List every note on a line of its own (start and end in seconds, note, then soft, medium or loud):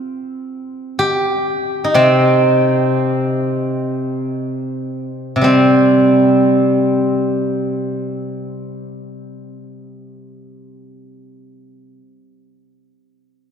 0.00 0.58 C4 soft
0.99 3.34 G4 medium
1.84 4.55 D#4 soft
1.94 5.35 C3 soft
1.94 5.06 C4 medium
5.36 11.99 C3 soft
5.41 11.48 G3 soft
5.41 9.55 C4 soft